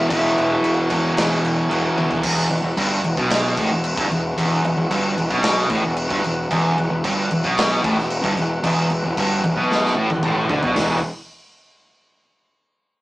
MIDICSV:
0, 0, Header, 1, 7, 480
1, 0, Start_track
1, 0, Key_signature, 1, "minor"
1, 0, Tempo, 533333
1, 93, Time_signature, 4, 2, 24, 8
1, 11714, End_track
2, 0, Start_track
2, 0, Title_t, "Lead electric guitar"
2, 0, Program_c, 0, 29
2, 81, Note_on_c, 0, 76, 88
2, 771, Note_off_c, 0, 76, 0
2, 11714, End_track
3, 0, Start_track
3, 0, Title_t, "Tonewheel organ"
3, 0, Program_c, 1, 16
3, 0, Note_on_c, 1, 52, 67
3, 0, Note_on_c, 1, 54, 71
3, 0, Note_on_c, 1, 59, 64
3, 1976, Note_off_c, 1, 52, 0
3, 1976, Note_off_c, 1, 54, 0
3, 1976, Note_off_c, 1, 59, 0
3, 2010, Note_on_c, 1, 59, 66
3, 2010, Note_on_c, 1, 66, 74
3, 2014, Note_on_c, 1, 52, 65
3, 9655, Note_off_c, 1, 59, 0
3, 9655, Note_off_c, 1, 66, 0
3, 9657, Note_off_c, 1, 52, 0
3, 9683, Note_on_c, 1, 52, 66
3, 9684, Note_on_c, 1, 59, 55
3, 9686, Note_on_c, 1, 66, 65
3, 9911, Note_off_c, 1, 52, 0
3, 9912, Note_off_c, 1, 59, 0
3, 9913, Note_off_c, 1, 66, 0
3, 11714, End_track
4, 0, Start_track
4, 0, Title_t, "Distorted electric guitar"
4, 0, Program_c, 2, 30
4, 0, Note_on_c, 2, 52, 101
4, 110, Note_off_c, 2, 52, 0
4, 1771, Note_on_c, 2, 52, 104
4, 1789, Note_on_c, 2, 47, 84
4, 1799, Note_on_c, 2, 40, 80
4, 1998, Note_off_c, 2, 52, 0
4, 2007, Note_off_c, 2, 47, 0
4, 2012, Note_off_c, 2, 40, 0
4, 11714, End_track
5, 0, Start_track
5, 0, Title_t, "Overdriven electric guitar"
5, 0, Program_c, 3, 29
5, 0, Note_on_c, 3, 52, 77
5, 87, Note_on_c, 3, 40, 99
5, 99, Note_on_c, 3, 47, 107
5, 107, Note_off_c, 3, 52, 0
5, 110, Note_on_c, 3, 52, 107
5, 796, Note_off_c, 3, 40, 0
5, 801, Note_off_c, 3, 52, 0
5, 802, Note_off_c, 3, 47, 0
5, 812, Note_on_c, 3, 52, 92
5, 821, Note_on_c, 3, 47, 91
5, 833, Note_on_c, 3, 40, 74
5, 1509, Note_off_c, 3, 40, 0
5, 1519, Note_off_c, 3, 52, 0
5, 1520, Note_on_c, 3, 40, 84
5, 1523, Note_off_c, 3, 47, 0
5, 1533, Note_on_c, 3, 47, 82
5, 1544, Note_on_c, 3, 52, 100
5, 1993, Note_off_c, 3, 40, 0
5, 1999, Note_off_c, 3, 47, 0
5, 2005, Note_off_c, 3, 52, 0
5, 2007, Note_on_c, 3, 40, 127
5, 2244, Note_off_c, 3, 40, 0
5, 2255, Note_on_c, 3, 40, 73
5, 2356, Note_off_c, 3, 40, 0
5, 2367, Note_on_c, 3, 40, 71
5, 2490, Note_off_c, 3, 40, 0
5, 2494, Note_on_c, 3, 43, 108
5, 2727, Note_off_c, 3, 43, 0
5, 2732, Note_on_c, 3, 40, 75
5, 2853, Note_off_c, 3, 40, 0
5, 2857, Note_on_c, 3, 47, 105
5, 3209, Note_off_c, 3, 47, 0
5, 3220, Note_on_c, 3, 45, 109
5, 3330, Note_off_c, 3, 45, 0
5, 3349, Note_on_c, 3, 40, 74
5, 3533, Note_off_c, 3, 40, 0
5, 3585, Note_on_c, 3, 43, 113
5, 3692, Note_off_c, 3, 43, 0
5, 3698, Note_on_c, 3, 40, 65
5, 3888, Note_off_c, 3, 40, 0
5, 3941, Note_on_c, 3, 40, 118
5, 4170, Note_off_c, 3, 40, 0
5, 4186, Note_on_c, 3, 40, 74
5, 4288, Note_off_c, 3, 40, 0
5, 4298, Note_on_c, 3, 40, 68
5, 4412, Note_off_c, 3, 40, 0
5, 4416, Note_on_c, 3, 43, 97
5, 4647, Note_off_c, 3, 43, 0
5, 4656, Note_on_c, 3, 40, 75
5, 4773, Note_on_c, 3, 47, 115
5, 4775, Note_off_c, 3, 40, 0
5, 5126, Note_off_c, 3, 47, 0
5, 5133, Note_on_c, 3, 45, 107
5, 5246, Note_off_c, 3, 45, 0
5, 5249, Note_on_c, 3, 40, 81
5, 5443, Note_off_c, 3, 40, 0
5, 5495, Note_on_c, 3, 43, 110
5, 5607, Note_off_c, 3, 43, 0
5, 5621, Note_on_c, 3, 40, 71
5, 5809, Note_off_c, 3, 40, 0
5, 5858, Note_on_c, 3, 40, 118
5, 6088, Note_off_c, 3, 40, 0
5, 6104, Note_on_c, 3, 40, 73
5, 6200, Note_off_c, 3, 40, 0
5, 6211, Note_on_c, 3, 40, 73
5, 6332, Note_off_c, 3, 40, 0
5, 6337, Note_on_c, 3, 43, 113
5, 6568, Note_off_c, 3, 43, 0
5, 6583, Note_on_c, 3, 40, 79
5, 6698, Note_off_c, 3, 40, 0
5, 6701, Note_on_c, 3, 47, 109
5, 7049, Note_off_c, 3, 47, 0
5, 7057, Note_on_c, 3, 45, 100
5, 7167, Note_off_c, 3, 45, 0
5, 7172, Note_on_c, 3, 40, 79
5, 7364, Note_off_c, 3, 40, 0
5, 7414, Note_on_c, 3, 43, 107
5, 7526, Note_off_c, 3, 43, 0
5, 7539, Note_on_c, 3, 40, 80
5, 7728, Note_off_c, 3, 40, 0
5, 7771, Note_on_c, 3, 40, 122
5, 8004, Note_off_c, 3, 40, 0
5, 8024, Note_on_c, 3, 40, 75
5, 8122, Note_off_c, 3, 40, 0
5, 8133, Note_on_c, 3, 40, 79
5, 8253, Note_off_c, 3, 40, 0
5, 8262, Note_on_c, 3, 43, 94
5, 8490, Note_off_c, 3, 43, 0
5, 8497, Note_on_c, 3, 40, 80
5, 8610, Note_on_c, 3, 47, 104
5, 8615, Note_off_c, 3, 40, 0
5, 8962, Note_off_c, 3, 47, 0
5, 8966, Note_on_c, 3, 45, 103
5, 9082, Note_off_c, 3, 45, 0
5, 9088, Note_on_c, 3, 40, 69
5, 9211, Note_off_c, 3, 40, 0
5, 9218, Note_on_c, 3, 45, 96
5, 9447, Note_off_c, 3, 45, 0
5, 9451, Note_on_c, 3, 50, 107
5, 9565, Note_off_c, 3, 50, 0
5, 9569, Note_on_c, 3, 47, 104
5, 9682, Note_off_c, 3, 47, 0
5, 9686, Note_on_c, 3, 40, 100
5, 9693, Note_on_c, 3, 47, 99
5, 9699, Note_on_c, 3, 52, 117
5, 9882, Note_off_c, 3, 40, 0
5, 9885, Note_off_c, 3, 47, 0
5, 9888, Note_off_c, 3, 52, 0
5, 11714, End_track
6, 0, Start_track
6, 0, Title_t, "Fingered electric bass"
6, 0, Program_c, 4, 33
6, 94, Note_on_c, 4, 28, 90
6, 250, Note_off_c, 4, 28, 0
6, 331, Note_on_c, 4, 28, 97
6, 488, Note_off_c, 4, 28, 0
6, 566, Note_on_c, 4, 28, 95
6, 725, Note_off_c, 4, 28, 0
6, 814, Note_on_c, 4, 28, 97
6, 971, Note_off_c, 4, 28, 0
6, 1050, Note_on_c, 4, 28, 98
6, 1208, Note_off_c, 4, 28, 0
6, 1285, Note_on_c, 4, 28, 90
6, 1444, Note_off_c, 4, 28, 0
6, 1526, Note_on_c, 4, 28, 101
6, 1685, Note_off_c, 4, 28, 0
6, 1766, Note_on_c, 4, 28, 95
6, 1925, Note_off_c, 4, 28, 0
6, 2015, Note_on_c, 4, 28, 86
6, 2238, Note_off_c, 4, 28, 0
6, 2247, Note_on_c, 4, 28, 97
6, 2357, Note_off_c, 4, 28, 0
6, 2363, Note_on_c, 4, 28, 80
6, 2480, Note_off_c, 4, 28, 0
6, 2499, Note_on_c, 4, 31, 99
6, 2720, Note_off_c, 4, 31, 0
6, 2733, Note_on_c, 4, 28, 84
6, 2845, Note_off_c, 4, 28, 0
6, 2861, Note_on_c, 4, 35, 102
6, 3193, Note_off_c, 4, 35, 0
6, 3217, Note_on_c, 4, 33, 87
6, 3324, Note_off_c, 4, 33, 0
6, 3329, Note_on_c, 4, 28, 70
6, 3554, Note_off_c, 4, 28, 0
6, 3578, Note_on_c, 4, 31, 106
6, 3681, Note_off_c, 4, 31, 0
6, 3687, Note_on_c, 4, 28, 81
6, 3913, Note_off_c, 4, 28, 0
6, 3939, Note_on_c, 4, 28, 85
6, 4160, Note_off_c, 4, 28, 0
6, 4178, Note_on_c, 4, 28, 99
6, 4288, Note_off_c, 4, 28, 0
6, 4304, Note_on_c, 4, 28, 78
6, 4407, Note_off_c, 4, 28, 0
6, 4413, Note_on_c, 4, 31, 107
6, 4636, Note_off_c, 4, 31, 0
6, 4662, Note_on_c, 4, 28, 88
6, 4765, Note_off_c, 4, 28, 0
6, 4770, Note_on_c, 4, 35, 102
6, 5107, Note_off_c, 4, 35, 0
6, 5130, Note_on_c, 4, 33, 88
6, 5243, Note_off_c, 4, 33, 0
6, 5268, Note_on_c, 4, 28, 89
6, 5485, Note_off_c, 4, 28, 0
6, 5496, Note_on_c, 4, 31, 103
6, 5606, Note_off_c, 4, 31, 0
6, 5624, Note_on_c, 4, 28, 85
6, 5842, Note_off_c, 4, 28, 0
6, 5860, Note_on_c, 4, 28, 85
6, 6080, Note_off_c, 4, 28, 0
6, 6108, Note_on_c, 4, 28, 90
6, 6213, Note_off_c, 4, 28, 0
6, 6223, Note_on_c, 4, 28, 77
6, 6330, Note_off_c, 4, 28, 0
6, 6341, Note_on_c, 4, 31, 103
6, 6561, Note_off_c, 4, 31, 0
6, 6591, Note_on_c, 4, 28, 85
6, 6694, Note_off_c, 4, 28, 0
6, 6704, Note_on_c, 4, 35, 93
6, 7033, Note_off_c, 4, 35, 0
6, 7057, Note_on_c, 4, 33, 97
6, 7166, Note_off_c, 4, 33, 0
6, 7189, Note_on_c, 4, 28, 78
6, 7404, Note_off_c, 4, 28, 0
6, 7419, Note_on_c, 4, 31, 105
6, 7528, Note_off_c, 4, 31, 0
6, 7548, Note_on_c, 4, 28, 90
6, 7764, Note_off_c, 4, 28, 0
6, 7773, Note_on_c, 4, 28, 91
6, 7996, Note_off_c, 4, 28, 0
6, 8018, Note_on_c, 4, 28, 90
6, 8127, Note_off_c, 4, 28, 0
6, 8143, Note_on_c, 4, 28, 87
6, 8250, Note_off_c, 4, 28, 0
6, 8255, Note_on_c, 4, 31, 103
6, 8477, Note_off_c, 4, 31, 0
6, 8487, Note_on_c, 4, 28, 90
6, 8601, Note_off_c, 4, 28, 0
6, 8608, Note_on_c, 4, 35, 108
6, 8945, Note_off_c, 4, 35, 0
6, 8968, Note_on_c, 4, 33, 92
6, 9082, Note_off_c, 4, 33, 0
6, 9090, Note_on_c, 4, 28, 76
6, 9203, Note_off_c, 4, 28, 0
6, 9211, Note_on_c, 4, 33, 101
6, 9435, Note_off_c, 4, 33, 0
6, 9458, Note_on_c, 4, 38, 103
6, 9567, Note_off_c, 4, 38, 0
6, 9572, Note_on_c, 4, 35, 106
6, 9684, Note_off_c, 4, 35, 0
6, 9691, Note_on_c, 4, 28, 83
6, 9915, Note_off_c, 4, 28, 0
6, 11714, End_track
7, 0, Start_track
7, 0, Title_t, "Drums"
7, 94, Note_on_c, 9, 36, 118
7, 96, Note_on_c, 9, 49, 89
7, 184, Note_off_c, 9, 36, 0
7, 186, Note_off_c, 9, 49, 0
7, 342, Note_on_c, 9, 49, 62
7, 432, Note_off_c, 9, 49, 0
7, 575, Note_on_c, 9, 49, 74
7, 665, Note_off_c, 9, 49, 0
7, 809, Note_on_c, 9, 49, 70
7, 812, Note_on_c, 9, 36, 88
7, 899, Note_off_c, 9, 49, 0
7, 902, Note_off_c, 9, 36, 0
7, 1054, Note_on_c, 9, 49, 92
7, 1065, Note_on_c, 9, 38, 122
7, 1144, Note_off_c, 9, 49, 0
7, 1155, Note_off_c, 9, 38, 0
7, 1301, Note_on_c, 9, 49, 73
7, 1391, Note_off_c, 9, 49, 0
7, 1538, Note_on_c, 9, 49, 77
7, 1628, Note_off_c, 9, 49, 0
7, 1780, Note_on_c, 9, 48, 70
7, 1870, Note_off_c, 9, 48, 0
7, 1896, Note_on_c, 9, 43, 102
7, 1986, Note_off_c, 9, 43, 0
7, 2008, Note_on_c, 9, 49, 79
7, 2008, Note_on_c, 9, 57, 118
7, 2013, Note_on_c, 9, 36, 104
7, 2098, Note_off_c, 9, 49, 0
7, 2098, Note_off_c, 9, 57, 0
7, 2103, Note_off_c, 9, 36, 0
7, 2252, Note_on_c, 9, 49, 61
7, 2342, Note_off_c, 9, 49, 0
7, 2497, Note_on_c, 9, 36, 97
7, 2497, Note_on_c, 9, 49, 87
7, 2587, Note_off_c, 9, 36, 0
7, 2587, Note_off_c, 9, 49, 0
7, 2737, Note_on_c, 9, 49, 68
7, 2827, Note_off_c, 9, 49, 0
7, 2856, Note_on_c, 9, 36, 116
7, 2946, Note_off_c, 9, 36, 0
7, 2972, Note_on_c, 9, 49, 89
7, 2983, Note_on_c, 9, 38, 115
7, 3062, Note_off_c, 9, 49, 0
7, 3073, Note_off_c, 9, 38, 0
7, 3216, Note_on_c, 9, 49, 74
7, 3217, Note_on_c, 9, 36, 119
7, 3306, Note_off_c, 9, 49, 0
7, 3307, Note_off_c, 9, 36, 0
7, 3453, Note_on_c, 9, 49, 86
7, 3543, Note_off_c, 9, 49, 0
7, 3577, Note_on_c, 9, 36, 121
7, 3667, Note_off_c, 9, 36, 0
7, 3705, Note_on_c, 9, 49, 60
7, 3795, Note_off_c, 9, 49, 0
7, 3940, Note_on_c, 9, 36, 104
7, 3942, Note_on_c, 9, 49, 92
7, 4030, Note_off_c, 9, 36, 0
7, 4032, Note_off_c, 9, 49, 0
7, 4180, Note_on_c, 9, 49, 63
7, 4270, Note_off_c, 9, 49, 0
7, 4417, Note_on_c, 9, 36, 94
7, 4417, Note_on_c, 9, 49, 81
7, 4507, Note_off_c, 9, 36, 0
7, 4507, Note_off_c, 9, 49, 0
7, 4659, Note_on_c, 9, 49, 66
7, 4749, Note_off_c, 9, 49, 0
7, 4775, Note_on_c, 9, 36, 105
7, 4865, Note_off_c, 9, 36, 0
7, 4885, Note_on_c, 9, 49, 89
7, 4896, Note_on_c, 9, 38, 113
7, 4975, Note_off_c, 9, 49, 0
7, 4986, Note_off_c, 9, 38, 0
7, 5125, Note_on_c, 9, 49, 68
7, 5132, Note_on_c, 9, 36, 124
7, 5215, Note_off_c, 9, 49, 0
7, 5222, Note_off_c, 9, 36, 0
7, 5368, Note_on_c, 9, 49, 85
7, 5458, Note_off_c, 9, 49, 0
7, 5494, Note_on_c, 9, 36, 127
7, 5584, Note_off_c, 9, 36, 0
7, 5615, Note_on_c, 9, 49, 67
7, 5705, Note_off_c, 9, 49, 0
7, 5857, Note_on_c, 9, 36, 102
7, 5862, Note_on_c, 9, 49, 74
7, 5947, Note_off_c, 9, 36, 0
7, 5952, Note_off_c, 9, 49, 0
7, 6100, Note_on_c, 9, 49, 55
7, 6190, Note_off_c, 9, 49, 0
7, 6337, Note_on_c, 9, 36, 100
7, 6339, Note_on_c, 9, 49, 81
7, 6427, Note_off_c, 9, 36, 0
7, 6429, Note_off_c, 9, 49, 0
7, 6576, Note_on_c, 9, 49, 69
7, 6666, Note_off_c, 9, 49, 0
7, 6698, Note_on_c, 9, 36, 102
7, 6788, Note_off_c, 9, 36, 0
7, 6819, Note_on_c, 9, 49, 85
7, 6830, Note_on_c, 9, 38, 120
7, 6909, Note_off_c, 9, 49, 0
7, 6920, Note_off_c, 9, 38, 0
7, 7058, Note_on_c, 9, 49, 69
7, 7059, Note_on_c, 9, 36, 124
7, 7148, Note_off_c, 9, 49, 0
7, 7149, Note_off_c, 9, 36, 0
7, 7186, Note_on_c, 9, 38, 36
7, 7276, Note_off_c, 9, 38, 0
7, 7292, Note_on_c, 9, 49, 79
7, 7382, Note_off_c, 9, 49, 0
7, 7416, Note_on_c, 9, 36, 116
7, 7506, Note_off_c, 9, 36, 0
7, 7534, Note_on_c, 9, 49, 61
7, 7624, Note_off_c, 9, 49, 0
7, 7772, Note_on_c, 9, 49, 92
7, 7775, Note_on_c, 9, 36, 104
7, 7862, Note_off_c, 9, 49, 0
7, 7865, Note_off_c, 9, 36, 0
7, 8009, Note_on_c, 9, 49, 70
7, 8099, Note_off_c, 9, 49, 0
7, 8255, Note_on_c, 9, 49, 84
7, 8256, Note_on_c, 9, 36, 94
7, 8345, Note_off_c, 9, 49, 0
7, 8346, Note_off_c, 9, 36, 0
7, 8494, Note_on_c, 9, 49, 67
7, 8584, Note_off_c, 9, 49, 0
7, 8743, Note_on_c, 9, 38, 72
7, 8833, Note_off_c, 9, 38, 0
7, 8869, Note_on_c, 9, 38, 57
7, 8959, Note_off_c, 9, 38, 0
7, 9091, Note_on_c, 9, 48, 77
7, 9181, Note_off_c, 9, 48, 0
7, 9206, Note_on_c, 9, 47, 96
7, 9296, Note_off_c, 9, 47, 0
7, 9445, Note_on_c, 9, 43, 111
7, 9535, Note_off_c, 9, 43, 0
7, 9565, Note_on_c, 9, 43, 103
7, 9655, Note_off_c, 9, 43, 0
7, 9687, Note_on_c, 9, 43, 112
7, 9687, Note_on_c, 9, 46, 89
7, 9697, Note_on_c, 9, 38, 99
7, 9777, Note_off_c, 9, 43, 0
7, 9777, Note_off_c, 9, 46, 0
7, 9787, Note_off_c, 9, 38, 0
7, 11714, End_track
0, 0, End_of_file